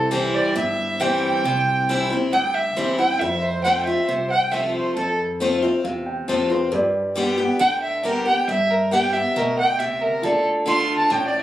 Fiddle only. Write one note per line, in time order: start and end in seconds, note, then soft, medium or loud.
0.00 0.11 A4 medium
0.12 0.36 C5 medium
0.34 0.56 D5 medium
0.57 1.02 E5 medium
1.00 1.22 G5 medium
1.22 2.08 G5 medium
2.33 2.56 G5 medium
2.54 2.78 E5 medium
2.77 2.98 C5 medium
2.99 3.21 G5 medium
3.19 3.43 E5 medium
3.42 3.63 C5 medium
3.64 3.85 G5 medium
3.86 4.09 E5 medium
4.08 4.29 C5 medium
4.30 4.53 G5 medium
4.52 4.73 E5 medium
4.74 4.95 C5 medium
4.95 5.17 A4 loud
7.61 7.81 G5 loud
7.82 8.03 E5 medium
8.05 8.26 A#4 medium
8.26 8.47 G5 medium
8.49 8.72 E5 medium
8.70 8.91 A#4 medium
8.92 9.15 G5 loud
9.13 9.38 E5 medium
9.37 9.58 A#4 medium
9.59 9.81 G5 loud
9.79 10.03 E5 medium
10.01 10.25 A#4 medium
10.23 10.45 A4 medium
10.68 10.96 C6 loud
10.98 11.14 A5 medium
11.13 11.26 G5 medium
11.28 11.40 D5 medium